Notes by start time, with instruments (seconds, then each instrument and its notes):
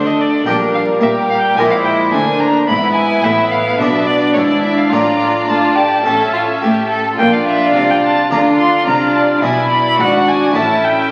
Already playing: double bass section D2, cello section D3, harpsichord D3 A3 D4 F#4, viola section A3, violin section D4 A4
0.06 violin D#5
0.20 violin D5
0.45 double bass section A#1, cello section A#2, harpsichord A#2 A#3 D4 G4, viola section G3, violin section D4 A#4, violin G5
0.74 violin F5
1.01 double bass section A#2, viola section G3, harpsichord A#3, cello section A#3, violin section G4, violin E5
1.30 violin F5
1.42 violin G5
1.57 double bass section A#1, cello section A#2, harpsichord A#2 A#3 D4 A#4, viola section G#3, violin section E4 C5, violin G#5
1.70 violin F5
1.84 violin G5
2.12 double bass section D2, cello section D3, harpsichord D3, viola section A#3, violin section D4, violin G#5
2.40 violin A#5
2.68 double bass section G#1, cello section G#2, harpsichord G#2, viola section B3, violin section E4 B4, violin B5
2.95 violin G#5
3.23 double bass section A1, cello section A2, harpsichord A2, violin E5
3.51 violin F5
3.79 double bass section B1, cello section B2, harpsichord B2 D4 F4 B4, violin section D4 D5, violin E5
4.06 violin D5
4.33 double bass section G#1, cello section G#2, harpsichord G#2, viola section E4, violin C#5
4.49 violin D5
4.62 violin E5
4.78 violin F5
4.91 double bass section A1, cello section A2, harpsichord A2 D4 F4 D5, viola section D4, violin section F4 D5, violin A#5
5.48 double bass section A2, cello section A3, harpsichord A3, violin section F4, violin A5
5.76 violin section G4
6.05 double bass section A1, cello section A2, harpsichord A2 C#4 E4 E5, viola section C#4, violin section A4 E5
6.34 violin section F4
6.62 double bass section A2, cello section A3, harpsichord A3, violin section G4
6.90 violin section A4
7.18 double bass section A#1, cello section A#2, harpsichord A#2, viola section D4, violin section F4 D5, violin G5
7.33 violin F5
7.47 violin E5
7.75 double bass section C2, harpsichord C3, cello section C3, violin F5
7.89 violin G5
8.04 violin A5
8.30 double bass section D2, cello section D3, harpsichord D3 D4 F4 D5, viola section D4, violin section F4 D5, violin A#5
8.59 violin C6
8.86 double bass section C2, cello section C3, harpsichord C3, violin section D4, viola section F4, violin A#5
9.15 violin A5
9.42 double bass section B1, cello section B2, harpsichord B2 D4 E4 E5, violin section E4, viola section E4, violin G#5
9.70 violin B5
9.98 double bass section G#1, cello section G#2, harpsichord G#2, viola section D4, violin section F#4, violin F#5
10.28 violin G#5
10.53 double bass section A1, cello section A2, harpsichord A2 C#4 E4 E5, viola section C#4, violin section E4 E5, violin A5
10.84 violin G5